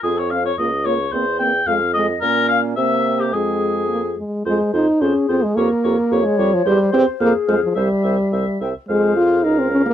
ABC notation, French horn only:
X:1
M:2/4
L:1/16
Q:1/4=109
K:Fm
V:1 name="French horn"
C2 C2 B,2 B,2 | B,2 B,2 A,2 A,2 | B,4 B,4 | A,4 B,2 A,2 |
A,2 E2 D2 C A, | B,4- B, A, G, F, | G,2 C2 B,2 A, F, | G,6 z2 |
A,2 F2 E C D B, |]